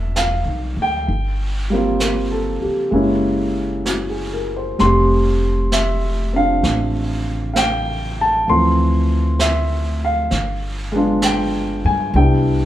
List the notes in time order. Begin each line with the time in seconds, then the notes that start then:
Already playing: E1 G3 B3 C4 D4 D5 E5
0.16 F5, brush sweep, snare, hi-hat pedal
0.45 B1
0.77 D2
0.82 G5
1.08 G1, brush sweep
1.70 G3 A#3 C4
1.75 F4
2.00 A#4, brush sweep, snare, hi-hat pedal
2.31 A4
2.62 G4, muted upright bass stroke
2.91 F#1 G#3 A#3 C#4, brush sweep
2.95 E4
3.86 F#4, brush sweep, snare, hi-hat pedal
4.09 G#4
4.33 A#4
4.57 C5
4.78 F1 G3 A3 C4 C6, brush sweep, snare
4.83 G4
5.72 E5, brush sweep, snare, hi-hat pedal
6.33 C4 D4 F4 F5
6.63 A1, brush sweep, snare
7.54 F5 G5, brush sweep, snare, hi-hat pedal
8.21 A5
8.48 D2 E3 F3 A3 C4 C6, brush sweep
9.39 E5, brush sweep, snare, hi-hat pedal
10.05 F5
10.31 G1, brush sweep, snare
10.92 G#3 B3 D4
10.97 F4
11.22 G5, brush sweep, snare, hi-hat pedal
11.84 G2 G#5
12.13 C2 G3 B3 D4 E4 G5, brush sweep